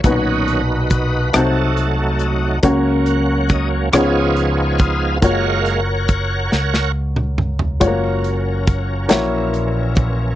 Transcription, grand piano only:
X:1
M:6/8
L:1/8
Q:3/8=46
K:F#
V:1 name="Grand piano"
[A,,B,,DFB]3 [=C,=A,_E_G=c]3 | [C,A,CFc]3 [C,B,EGc]3 | [A,EFc]6 | [G,A,EFc]3 [A,,A,=EFc]3 |]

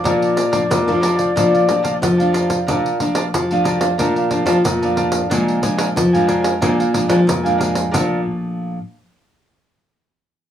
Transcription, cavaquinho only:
X:1
M:4/4
L:1/16
Q:1/4=91
K:Bb
V:1 name="Cavaquinho"
[Bdfa]2 [Bdfa] [Bdfa] z [dfa] [Bdfa] [dfa] [Bdfa] [dfa] [Bdfa] [Bdfa] z [dfa] [Bdfa]2 | [Bdfa]2 [Bdfa] [Bdfa] z [dfa] [Bdfa] [dfa] [Bdfa] [dfa] [Bdfa] [Bdfa] z [dfa] [Bdfa]2 | [DBf_a]2 [DBfa] [DBfa] z [Bfa] [DBfa] [Bfa] [DBfa] [Bfa] [DBfa] [DBfa] z [Bfa] [DBfa]2 | [Bdfa]2 z12 z2 |]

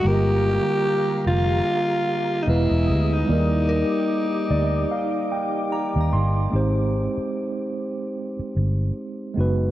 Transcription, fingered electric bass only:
X:1
M:4/4
L:1/16
Q:"Swing 16ths" 1/4=74
K:Ablyd
V:1 name="Fingered electric bass" clef=bass
G,,,3 z3 F,,,2 z4 =E,,, E,,, D,,2 | E,,3 z3 D,,2 z4 z E,, G,,,2 | A,,,3 z6 z G,,,2 z2 ^F,,,2 |]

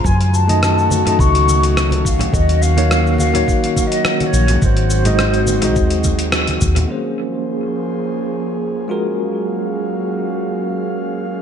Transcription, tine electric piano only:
X:1
M:4/4
L:1/16
Q:"Swing 16ths" 1/4=105
K:Gblyd
V:1 name="Tine electric piano"
z3 [=A,EGe]4 [A,EGe]8- [A,EGe] | z3 [B,EGd]4 [B,EGd]8- [B,EGd] | z3 [A,EGe]4 [A,EGe]8- [A,EGe] | [B,DAc]12- [B,DAc]2 [A,FGB]2- |
[A,FGB]16 |]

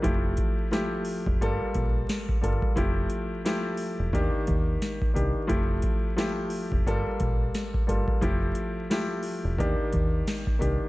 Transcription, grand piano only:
X:1
M:4/4
L:1/8
Q:"Swing 16ths" 1/4=88
K:F
V:1 name="Grand piano"
[F,A,EG]2 [F,A,EG]2 [G,B,FA]3 [G,B,FA] | [F,A,EG]2 [F,A,EG]2 [_E,B,DG]3 [E,B,DG] | [F,A,EG]2 [F,A,EG]2 [G,B,FA]3 [G,B,FA] | [F,A,EG]2 [F,A,EG]2 [_E,B,DG]3 [E,B,DG] |]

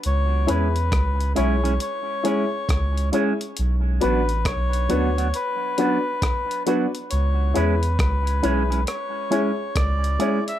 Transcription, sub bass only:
X:1
M:4/4
L:1/8
Q:"Swing 16ths" 1/4=68
K:C#phr
V:1 name="Sub bass" clef=bass
C,, E,, C,, B,,, z2 C,, z | B,,, A,,, B,,, D,, z4 | C,, E,, C,, B,,, z2 C,, z |]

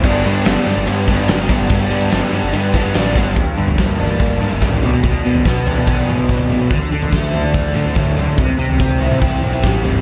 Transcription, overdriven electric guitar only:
X:1
M:4/4
L:1/8
Q:1/4=144
K:G
V:1 name="Overdriven electric guitar" clef=bass
[G,,D,G,B,D] [G,,D,G,B,D] [G,,D,G,B,D] [G,,D,G,B,D] [G,,D,G,B,D] [G,,D,G,B,D] [G,,D,G,B,D] [G,,D,G,B,D] | [G,,D,G,B,D] [G,,D,G,B,D] [G,,D,G,B,D] [G,,D,G,B,D] [G,,D,G,B,D] [G,,D,G,B,D] [G,,D,G,B,D] [G,,D,G,B,D] | G,, D, _B, D B, D, G, =B,, | B,, B,, B, D B, B,, F, B,, |
D, D, A, D A, D, F, D, | C, C, C E C C, G, C, |]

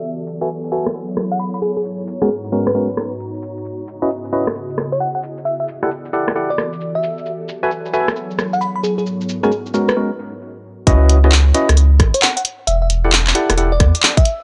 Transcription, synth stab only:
X:1
M:4/4
L:1/16
Q:"Swing 16ths" 1/4=133
K:C#m
V:1 name="Synth stab"
z3 [FABeg] z2 [FABeg] z8 z | z3 [G,B,CF^A] z2 [G,B,CFA]2 [G,B,CFA] z6 z | z3 [CEFBd] z2 [CEFBd] z8 z | z3 [E=GA=df] z2 [EGAdf]2 [EGAdf] z6 z |
z3 [FABeg] z2 [FABeg] z8 z | z3 [G,B,CF^A] z2 [G,B,CFA]2 [G,B,CFA] z6 z | [CEFBd]3 [CEFBd] z2 [CEFBd] z8 z | z3 [E=GA=df] z2 [EGAdf]2 [EGAdf] z6 z |]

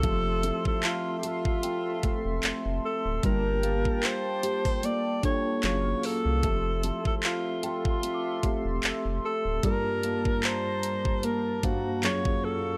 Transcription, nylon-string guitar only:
X:1
M:4/4
L:1/16
Q:"Swing 16ths" 1/4=75
K:F
V:1 name="Nylon-string guitar"
[F,A]2 [CEA]4 A2 C2 C6 | G,2 [B,F]2 F2 G A B,2 B,2 _G,4 | [F,A]2 [CEA]4 A2 C2 C6 | G,2 [B,F]6 B,2 B,2 _G,4 |]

